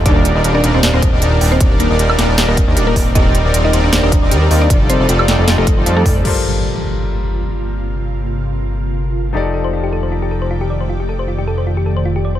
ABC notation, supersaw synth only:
X:1
M:4/4
L:1/16
Q:"Swing 16ths" 1/4=155
K:Gm
V:1 name="Supersaw synth"
[G,DEBd]3 [G,DEBd] [G,DEBd]2 [G,DEBd] [G,DEBd] [G,DEBd] [G,DEBe] z [G,DEBd] [G,DEBd]2 [G,DEBd] z | [G,DEBd]3 [G,DEBd] [G,DEBd]2 [G,DEBd] [G,DEBd] [G,DEBd] [G,DEBe] z [G,DEBd] [G,DEBd]2 [G,CEBd] z | [G,CEBd]3 [G,CEBd] [G,CEBd]2 [G,CEBd] [G,CEBd] [G,CEBd] [G,CEBe] z [G,CEBd] [G,CEBd]2 [G,CEBd] z | [G,EFAd]3 [G,EFAd] [G,EFAd]2 [G,EFAd] [G,EFAd] [G,EFAd] [G,EFAe] z [G,EFAd] [G,EFAd]2 [G,EFAd] z |
z16 | z16 | z16 | z16 |]